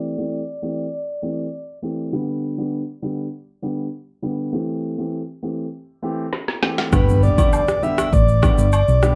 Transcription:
Already playing: E3 A3 C4 G4 D5
0.18 E3 A3 C4 G4
0.62 E3 A3 C4 G4
0.93 D5
1.22 E3 A3 C4 G4
1.82 E3 A3 C4 G4
2.12 D3 G3 B3 G4
2.58 D3 G3 B3 G4
3.02 D3 G3 B3 G4
3.62 D3 G3 B3 G4
4.22 D3 G3 B3 G4
4.52 E3 A3 C4 G4
4.98 E3 A3 C4 G4
5.42 E3 A3 C4 G4
6.02 E3 A3 C4 G4
6.33 snare
6.48 snare
6.62 E3 A3 C4 G4, snare
6.78 snare
6.92 G1 D3 G3 B3 G4 B4, kick, cross-stick, impact, high agogo, shaker
7.09 shaker
7.23 D5, shaker
7.38 D3 G3 B3 G4, kick, high agogo, shaker
7.53 D5, low woodblock, shaker
7.68 cross-stick, shaker
7.82 D3 G3 B3 G4 E5, shaker
7.98 cross-stick, high agogo, shaker
8.13 A1 D5, kick, shaker
8.28 shaker
8.42 D3 G3 B3 G4, kick, cross-stick, high agogo, shaker
8.58 G1, shaker
8.73 D5, high agogo, low woodblock, shaker
8.88 B1, shaker
9.02 D3 G3 B3 G4, cross-stick, shaker

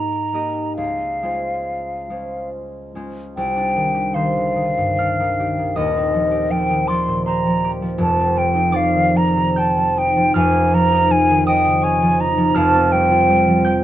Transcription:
Already playing: G#2 A#3 D#4 G4 D#5 A#5
0.33 A#3 D#4 G4 D#5
0.77 C#2 F5
1.23 G#3 C#4 F4 C5
2.10 G#3 C#4 F4 C5
2.95 G#3 C#4 F4 C5
3.37 C2 G5
3.56 D4
3.76 D#3
3.94 G4
4.14 D#3 C5 F5 C6
4.37 D3
4.56 D#3
4.78 G2
4.99 D4 F5 F6
5.20 D#3
5.40 G4
5.59 D#3
5.76 D#1 D#2 D#5 D#6
5.97 C4
6.14 F3
6.31 G4
6.51 F3 G5
6.70 D#3
6.88 F3 D5 C6 D6
7.08 A#2
7.26 C4 C5 A#5 C6
7.46 F3
7.64 G4
7.82 F3
7.98 F1 F2 A5
8.20 C4
8.36 F3 G5
8.55 D#4
8.72 F3 D5 F5 D6
8.94 D#3
9.15 F3 A#5
9.36 C3
9.56 C4 G5 A5 G6
9.77 F3
9.97 D#4 G5
10.16 F3
10.34 F1 F2 F5 G#5 F6
10.54 C#4
10.74 F3 A#5
10.92 D#4
11.10 F3 G#5
11.29 D#3
11.47 F3 D#5 G5 D#6
11.65 C#3
11.82 C#4 C#5 G#5 C#6
12.02 F3
12.19 D#4 A#5
12.38 F3
12.54 F1 F2 F5 A5 F6
12.75 C4
12.92 G3 G5
13.11 F4
13.30 G3
13.47 F3
13.65 G3 G5 G6

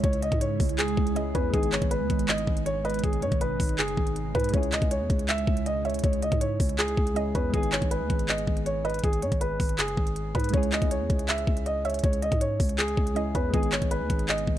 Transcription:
Already playing: C#3 G#3 C#4 E4 G#4
0.04 C#2 C#5, kick, closed hi-hat
0.13 closed hi-hat
0.22 D#5, closed hi-hat
0.32 G#2, kick, closed hi-hat
0.41 C#5, closed hi-hat
0.60 C#2, kick, open hi-hat
0.69 closed hi-hat
0.78 G#4, clap, closed hi-hat
0.88 closed hi-hat
0.97 C#2, kick
1.07 closed hi-hat
1.14 G#3 C#4 E4 G#4 D#5, closed hi-hat
1.35 E2 B4 C#5, kick, closed hi-hat
1.50 G#1 B2 G#3 B3 D#4 G#4, kick, closed hi-hat
1.55 D#4 G#4
1.63 closed hi-hat
1.72 C#5, clap, closed hi-hat
1.82 G#1, kick, closed hi-hat
1.91 B4, closed hi-hat
2.00 D#2
2.10 G#1, kick, closed hi-hat
2.19 closed hi-hat
2.29 D#5, clap, closed hi-hat
2.38 closed hi-hat
2.47 G#1, kick
2.57 closed hi-hat
2.66 C#5, closed hi-hat
2.85 B4 D#5, closed hi-hat
2.90 closed hi-hat
2.94 closed hi-hat
2.99 closed hi-hat
3.04 G#1 G#4, kick, closed hi-hat
3.13 closed hi-hat
3.22 G#2 C#5, closed hi-hat
3.32 G#1, kick, closed hi-hat
3.41 B4, closed hi-hat
3.60 G#1, kick, open hi-hat
3.69 closed hi-hat
3.79 F#1 G#4, clap, closed hi-hat
3.88 closed hi-hat
3.97 G#1, kick
4.07 closed hi-hat
4.16 closed hi-hat
4.35 G#2 B4, kick, closed hi-hat
4.40 closed hi-hat
4.44 closed hi-hat
4.49 G#3 C#4, closed hi-hat
4.54 C#2 C#3 G#3 E4 G#4 C#5, kick, closed hi-hat
4.63 closed hi-hat
4.72 D#5, clap, closed hi-hat
4.82 C#2, kick, closed hi-hat
4.91 C#5, closed hi-hat
5.00 E2
5.10 C#2, kick, closed hi-hat
5.19 closed hi-hat
5.29 E5, clap, closed hi-hat
5.38 closed hi-hat
5.47 C#2, kick
5.57 closed hi-hat
5.66 D#5, closed hi-hat
5.85 C#5 E5, closed hi-hat
5.90 closed hi-hat
5.94 closed hi-hat
5.99 closed hi-hat
6.04 C#2 C#5, kick, closed hi-hat
6.13 closed hi-hat
6.22 D#5, closed hi-hat
6.32 G#2, kick, closed hi-hat
6.41 C#5, closed hi-hat
6.60 C#2, kick, open hi-hat
6.69 closed hi-hat
6.79 G#4, clap, closed hi-hat
6.88 closed hi-hat
6.97 C#2, kick
7.07 closed hi-hat
7.14 G#3 C#4 E4 G#4 D#5, closed hi-hat
7.35 E2 B4 C#5, kick, closed hi-hat
7.50 G#1 G#3 B3 G#4, kick, closed hi-hat
7.55 D#4 G#4
7.63 closed hi-hat
7.72 C#5, clap, closed hi-hat
7.82 G#1, kick, closed hi-hat
7.91 B4, closed hi-hat
8.01 D#2
8.10 G#1, kick, closed hi-hat
8.19 closed hi-hat
8.29 D#5, clap, closed hi-hat
8.38 closed hi-hat
8.47 G#1, kick
8.57 closed hi-hat
8.66 C#5, closed hi-hat
8.85 B4 D#5, closed hi-hat
8.90 closed hi-hat
8.94 closed hi-hat
8.99 closed hi-hat
9.04 G#1 G#4, kick, closed hi-hat
9.13 closed hi-hat
9.22 G#2 C#5, closed hi-hat
9.32 G#1, kick, closed hi-hat
9.41 B4, closed hi-hat
9.60 G#1, kick, open hi-hat
9.69 closed hi-hat
9.79 F#1 G#4, clap, closed hi-hat
9.88 closed hi-hat
9.97 G#1, kick
10.07 closed hi-hat
10.16 closed hi-hat
10.35 G#2 B4, kick, closed hi-hat
10.40 closed hi-hat
10.44 closed hi-hat
10.49 G#3 C#4, closed hi-hat
10.54 C#2 E4 G#4 C#5, kick, closed hi-hat
10.63 closed hi-hat
10.72 D#5, clap, closed hi-hat
10.82 C#2, kick, closed hi-hat
10.91 C#5, closed hi-hat
11.00 E2
11.10 C#2, kick, closed hi-hat
11.19 closed hi-hat
11.29 E5, clap, closed hi-hat
11.38 closed hi-hat
11.47 C#2, kick
11.57 closed hi-hat
11.66 D#5, closed hi-hat
11.85 C#5 E5, closed hi-hat
11.90 closed hi-hat
11.94 closed hi-hat
11.99 closed hi-hat
12.04 C#2 C#5, kick, closed hi-hat
12.13 closed hi-hat
12.22 D#5, closed hi-hat
12.32 G#2, kick, closed hi-hat
12.41 C#5, closed hi-hat
12.60 C#2, kick, open hi-hat
12.69 closed hi-hat
12.78 G#4, clap, closed hi-hat
12.88 closed hi-hat
12.97 C#2, kick
13.07 closed hi-hat
13.14 G#3 C#4 E4 G#4 D#5, closed hi-hat
13.35 E2 B4 C#5, kick, closed hi-hat
13.50 G#1 B2 G#3 B3 D#4 G#4, kick, closed hi-hat
13.55 D#4 G#4
13.63 closed hi-hat
13.72 C#5, clap, closed hi-hat
13.82 G#1, kick, closed hi-hat
13.91 B4, closed hi-hat
14.01 D#2
14.10 G#1, kick, closed hi-hat
14.19 closed hi-hat
14.29 D#5, clap, closed hi-hat
14.38 closed hi-hat
14.47 G#1, kick

